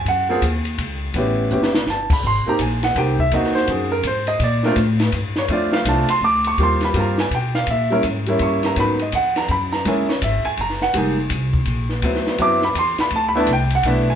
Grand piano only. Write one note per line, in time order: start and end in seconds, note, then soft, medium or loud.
0.08 0.41 F#5 medium
0.29 0.41 A#3 medium
0.29 0.41 C4 medium
0.29 0.41 F4 medium
0.29 0.42 G#4 medium
1.16 1.50 B3 medium
1.16 1.50 C#4 medium
1.16 1.51 E4 medium
1.16 1.51 G4 medium
1.51 1.72 B3 medium
1.51 1.72 C#4 medium
1.51 1.72 E4 soft
1.51 1.73 G4 medium
1.90 2.11 A5 medium
2.13 2.24 B5 medium
2.27 2.48 C6 medium
2.46 2.58 A#3 medium
2.46 2.59 C4 medium
2.46 2.59 D#4 medium
2.46 2.59 G4 medium
2.46 2.60 A#5 medium
2.62 2.83 G#5 medium
2.84 2.96 F#5 medium
2.97 3.17 A#3 medium
2.97 3.17 C4 medium
2.97 3.18 D#4 medium
2.97 3.18 G4 medium
2.97 3.19 G5 medium
3.20 3.32 E5 medium
3.32 3.87 A#3 medium
3.32 3.88 C4 medium
3.32 3.88 D#4 medium
3.32 3.88 F#4 medium
3.32 3.56 D#5 medium
3.55 3.68 C5 medium
3.70 3.92 G#4 medium
3.92 4.04 A#4 medium
4.07 4.29 C5 medium
4.28 4.41 D#5 medium
4.43 4.65 D5 medium
4.65 4.76 A3 medium
4.65 4.77 C4 medium
4.65 4.77 D4 medium
4.65 4.77 F4 medium
4.65 4.73 A#4 medium
5.38 5.50 C#5 medium
5.49 5.84 A3 medium
5.49 5.85 C4 medium
5.49 5.85 D4 medium
5.49 5.86 F4 medium
5.49 5.74 D5 medium
5.73 5.86 F5 medium
5.86 6.07 A3 medium
5.86 6.07 C4 medium
5.86 6.07 D4 medium
5.86 6.08 F4 medium
5.86 6.10 A5 medium
6.10 6.22 C6 loud
6.24 6.46 D6 loud
6.47 6.59 C#6 loud
6.59 6.92 G3 medium
6.59 6.93 A#3 medium
6.59 6.94 C4 medium
6.59 6.94 F4 medium
6.63 6.84 C6 medium
6.85 6.96 B5 medium
6.94 7.15 G3 medium
6.94 7.16 A#3 medium
6.94 7.16 C4 medium
6.94 7.16 F4 medium
7.00 7.20 A#5 medium
7.20 7.32 G#5 medium
7.35 7.56 G5 medium
7.55 7.68 F5 medium
7.70 7.92 E5 medium
7.90 8.02 G3 medium
7.90 8.03 A#3 medium
7.90 8.03 C#4 medium
7.90 8.03 E4 medium
7.90 8.00 A#4 medium
8.27 8.74 G3 medium
8.27 8.75 A#3 medium
8.27 8.75 C#4 medium
8.27 8.75 E4 medium
8.42 8.64 C#6 medium
8.66 8.77 A#5 medium
8.76 8.97 F#3 medium
8.76 8.98 A#3 medium
8.76 8.98 B3 medium
8.76 8.98 D#4 medium
8.76 9.01 B5 loud
9.02 9.14 D#5 medium
9.15 9.37 F#5 medium
9.37 9.50 A#5 loud
9.51 9.73 B5 loud
9.72 9.85 A#5 medium
9.85 10.06 G#3 medium
9.85 10.07 A#3 medium
9.85 10.07 C#4 medium
9.85 10.08 E4 medium
9.85 10.09 G#5 medium
10.09 10.22 C#5 medium
10.24 10.45 E5 medium
10.45 10.58 G#5 loud
10.61 10.82 A#5 medium
10.82 10.94 F#5 medium
10.94 11.15 G3 medium
10.94 11.16 G#3 medium
10.94 11.16 A#3 medium
10.94 11.16 D#4 medium
10.94 12.01 G#5 medium
12.03 12.37 F#3 medium
12.03 12.38 B3 medium
12.03 12.39 C4 medium
12.03 12.39 E4 medium
12.39 12.60 F#3 medium
12.39 12.60 B3 medium
12.39 12.61 C4 medium
12.39 12.61 E4 medium
12.39 12.63 D6 medium
12.64 12.76 B5 medium
12.79 13.00 C6 medium
13.00 13.13 B5 loud
13.16 13.26 A5 medium
13.29 13.38 B5 loud
13.35 13.47 A3 medium
13.35 13.47 B3 medium
13.35 13.48 D4 medium
13.35 13.48 E4 loud
13.39 13.50 A5 medium
13.53 13.73 G5 medium
13.75 13.86 F#5 medium
13.85 14.06 A3 medium
13.85 14.06 B3 medium
13.85 14.06 D4 medium
13.85 14.07 E4 medium
13.85 14.09 E5 medium
14.10 14.15 G#5 medium